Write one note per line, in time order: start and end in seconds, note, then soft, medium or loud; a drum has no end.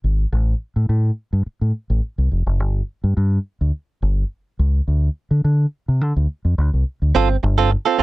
0.04 0.25 G#1 medium
0.32 0.53 A1 loud
0.76 0.86 A2 medium
0.89 1.10 A2 medium
1.33 1.42 G2 medium
1.46 muted fingered electric bass stroke soft
1.61 1.71 A2 medium
1.90 1.99 A1 medium
2.18 2.28 C2 medium
2.32 2.42 F1 medium
2.46 2.60 F#1 medium
2.60 2.81 G1 medium
3.04 3.13 G2 medium
3.17 3.38 G2 loud
3.61 3.70 D2 medium
4.02 4.23 G1 medium
4.59 4.80 C#2 medium
4.88 5.08 D2 medium
5.31 5.41 D3 medium
5.44 5.65 D3 medium
5.88 6.01 C3 medium
6.01 6.12 D3 medium
6.16 6.26 D2 medium
6.45 6.54 F2 medium
6.58 6.69 D2 medium
6.74 6.83 C2 medium
7.02 7.11 D2 medium
7.15 7.35 G1 medium
7.15 7.36 C4 medium
7.15 7.29 F4 medium
7.15 7.28 A4 medium
7.30 muted clean electric guitar stroke soft
7.43 7.75 G1 loud
7.43 muted clean electric guitar stroke medium
7.58 7.70 C4 medium
7.58 7.70 F4 medium
7.58 7.71 A4 medium
7.71 muted clean electric guitar stroke soft
7.86 7.97 C4 medium
7.86 7.98 F4 medium
7.86 7.99 A4 medium
7.99 8.03 F1 loud
7.99 8.03 C4 medium
7.99 8.03 F4 loud
7.99 8.03 A4 medium